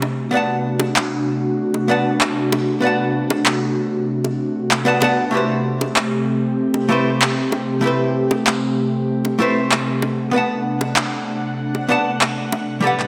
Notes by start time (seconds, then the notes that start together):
Already playing: C3 A3
0.02 D4 F#4, high bongo
0.31 B3 B4 D5
0.35 F#5 A5
0.80 high bongo
0.96 clap
1.74 high bongo
1.88 B3 B4 D5 F#5 A5
2.21 clap
2.52 high bongo
2.80 B3 B4 D5
2.85 F#5 A5
3.30 high bongo
3.46 clap
4.24 high bongo
4.71 clap
4.85 B3 B4 D5 F#5 A5
5.00 B3 B4 D5 F#5 A5, high bongo
5.31 A3 C4 E4 G4
5.35 B4 C5
5.81 high bongo
5.96 clap
6.74 high bongo
6.89 A3 E4 G4 B4 C5
7.22 clap
7.52 high bongo
7.81 A3 E4 G4
7.86 B4 C5
8.31 high bongo
8.47 clap
9.25 high bongo
9.39 A3 E4 G4 B4 C5
9.72 clap
10.02 D4 F#5, high bongo
10.31 B3 B4
10.36 F#5 A5
10.81 high bongo
10.96 clap
11.75 high bongo
11.88 B3 B4 D5 F#5 A5
12.21 clap
12.52 high bongo
12.81 A2 G3 B3 G4 A4
12.85 B4 F#5
13.00 clap